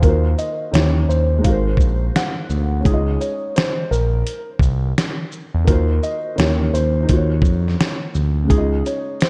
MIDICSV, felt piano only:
0, 0, Header, 1, 2, 480
1, 0, Start_track
1, 0, Tempo, 705882
1, 16, Time_signature, 4, 2, 24, 8
1, 6321, End_track
2, 0, Start_track
2, 0, Title_t, "Felt piano"
2, 0, Program_c, 0, 0
2, 0, Control_c, 0, 64, 127
2, 0, Note_on_c, 0, 77, 55
2, 13, Note_on_c, 0, 51, 63
2, 24, Note_on_c, 0, 58, 52
2, 26, Control_c, 0, 64, 0
2, 37, Note_on_c, 0, 65, 56
2, 49, Note_on_c, 0, 66, 58
2, 60, Note_on_c, 0, 72, 69
2, 145, Control_c, 0, 64, 127
2, 161, Note_off_c, 0, 77, 0
2, 477, Note_off_c, 0, 51, 0
2, 487, Note_on_c, 0, 51, 63
2, 490, Note_off_c, 0, 58, 0
2, 500, Note_on_c, 0, 58, 58
2, 505, Control_c, 0, 64, 0
2, 507, Note_off_c, 0, 65, 0
2, 511, Note_on_c, 0, 64, 60
2, 513, Note_off_c, 0, 66, 0
2, 518, Note_off_c, 0, 72, 0
2, 523, Note_on_c, 0, 67, 55
2, 535, Note_on_c, 0, 72, 50
2, 571, Note_off_c, 0, 72, 0
2, 578, Note_on_c, 0, 61, 66
2, 633, Control_c, 0, 64, 127
2, 941, Note_on_c, 0, 56, 60
2, 960, Note_on_c, 0, 63, 59
2, 972, Note_off_c, 0, 51, 0
2, 977, Note_on_c, 0, 77, 57
2, 978, Note_off_c, 0, 58, 0
2, 984, Note_off_c, 0, 64, 0
2, 984, Control_c, 0, 64, 0
2, 990, Note_off_c, 0, 67, 0
2, 998, Note_on_c, 0, 66, 58
2, 1015, Note_on_c, 0, 70, 53
2, 1017, Note_off_c, 0, 61, 0
2, 1034, Note_on_c, 0, 72, 64
2, 1119, Control_c, 0, 64, 127
2, 1469, Note_on_c, 0, 78, 69
2, 1899, Note_off_c, 0, 56, 0
2, 1905, Note_on_c, 0, 61, 57
2, 1909, Note_off_c, 0, 63, 0
2, 1916, Note_off_c, 0, 78, 0
2, 1918, Note_off_c, 0, 77, 0
2, 1928, Note_off_c, 0, 66, 0
2, 1928, Note_on_c, 0, 56, 56
2, 1937, Note_off_c, 0, 70, 0
2, 1946, Note_off_c, 0, 72, 0
2, 1946, Control_c, 0, 64, 0
2, 1951, Note_on_c, 0, 63, 53
2, 1976, Note_on_c, 0, 65, 59
2, 1997, Note_on_c, 0, 75, 72
2, 2065, Control_c, 0, 64, 127
2, 3814, Note_off_c, 0, 61, 0
2, 3825, Note_off_c, 0, 56, 0
2, 3837, Note_off_c, 0, 63, 0
2, 3838, Note_on_c, 0, 51, 55
2, 3849, Note_off_c, 0, 65, 0
2, 3851, Note_on_c, 0, 58, 55
2, 3860, Note_off_c, 0, 75, 0
2, 3865, Control_c, 0, 64, 0
2, 3865, Note_on_c, 0, 65, 53
2, 3877, Note_on_c, 0, 66, 59
2, 3888, Note_on_c, 0, 72, 70
2, 3979, Control_c, 0, 64, 127
2, 4313, Note_off_c, 0, 51, 0
2, 4324, Note_off_c, 0, 58, 0
2, 4324, Note_on_c, 0, 51, 60
2, 4334, Note_on_c, 0, 58, 55
2, 4341, Note_off_c, 0, 65, 0
2, 4346, Control_c, 0, 64, 0
2, 4347, Note_off_c, 0, 66, 0
2, 4348, Note_on_c, 0, 64, 53
2, 4352, Note_off_c, 0, 72, 0
2, 4358, Note_on_c, 0, 67, 54
2, 4369, Note_on_c, 0, 61, 72
2, 4475, Control_c, 0, 64, 127
2, 4779, Note_on_c, 0, 63, 61
2, 4792, Note_off_c, 0, 58, 0
2, 4802, Note_on_c, 0, 58, 57
2, 4810, Note_off_c, 0, 51, 0
2, 4822, Note_off_c, 0, 64, 0
2, 4825, Note_on_c, 0, 65, 55
2, 4826, Control_c, 0, 64, 0
2, 4827, Note_off_c, 0, 67, 0
2, 4833, Note_off_c, 0, 61, 0
2, 4848, Note_on_c, 0, 66, 59
2, 4871, Note_on_c, 0, 73, 71
2, 4946, Control_c, 0, 64, 127
2, 5738, Note_off_c, 0, 63, 0
2, 5742, Note_on_c, 0, 49, 59
2, 5750, Note_off_c, 0, 58, 0
2, 5762, Note_off_c, 0, 65, 0
2, 5763, Note_on_c, 0, 56, 55
2, 5773, Note_off_c, 0, 66, 0
2, 5785, Note_off_c, 0, 73, 0
2, 5785, Control_c, 0, 64, 0
2, 5786, Note_on_c, 0, 63, 56
2, 5812, Note_on_c, 0, 65, 55
2, 5834, Note_on_c, 0, 75, 63
2, 5916, Control_c, 0, 64, 127
2, 6321, Note_off_c, 0, 49, 0
2, 6321, Note_off_c, 0, 56, 0
2, 6321, Note_off_c, 0, 63, 0
2, 6321, Note_off_c, 0, 65, 0
2, 6321, Note_off_c, 0, 75, 0
2, 6321, End_track
0, 0, End_of_file